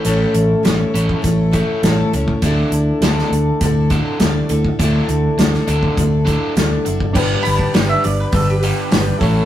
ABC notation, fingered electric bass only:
X:1
M:4/4
L:1/8
Q:1/4=102
K:Glyd
V:1 name="Fingered electric bass" clef=bass
A,,, A,,, A,,, A,,, A,,,2 A,,, C,, | D,, D,, D,, D,, D,,2 D,, D,, | D,, D,, D,, D,, D,,2 D,, F,,, | G,,, G,,, G,,, G,,, G,,,2 G,,, A,,, |]